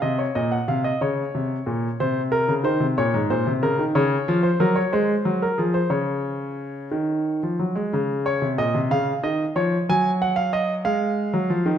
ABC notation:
X:1
M:6/8
L:1/16
Q:3/8=61
K:Bbphr
V:1 name="Grand piano"
e d e g f e d6 | =c2 B2 c2 d2 c2 B2 | [K:Bbm] d3 c B d c3 B A c | d8- d2 z2 |
z2 d2 e2 f2 e2 d2 | a2 g f e2 f6 |]
V:2 name="Grand piano" clef=bass
=C,2 B,,2 C,2 D,2 C,2 B,,2 | =C,3 D, E, C, B,, A,, B,, C, D, E, | [K:Bbm] D,2 F,2 G,2 A,2 G,2 F,2 | D,6 E,3 F, G, A, |
D,3 C, B,, C, D,2 E,2 F,2 | G,6 A,3 G, F, E, |]